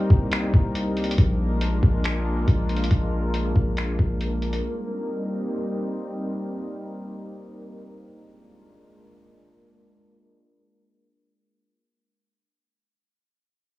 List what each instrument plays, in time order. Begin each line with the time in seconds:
Already playing: ambient pad G3 A#3 C4 D#4 A#4
0.10 808-style bass C2, kick
0.32 finger snap, closed hi-hat
0.54 808-style bass C2, kick
0.75 closed hi-hat
0.97 closed hi-hat
1.04 closed hi-hat
1.11 closed hi-hat
1.18 808-style bass A#1, ambient pad G#3 D4 F4, kick, closed hi-hat
1.61 closed hi-hat
1.83 808-style bass A#1, kick
2.04 finger snap, closed hi-hat
2.48 808-style bass A#1, kick, closed hi-hat
2.69 closed hi-hat
2.77 closed hi-hat
2.84 closed hi-hat
2.91 808-style bass A#1, kick, closed hi-hat
3.34 closed hi-hat
3.56 808-style bass A#1, kick
3.77 finger snap, closed hi-hat
3.99 808-style bass A#1, kick
4.21 closed hi-hat
4.42 closed hi-hat
4.53 closed hi-hat
4.63 ambient pad G3 C4 D#4
8.09 ambient pad G#3 A#3 D4 F4 A#4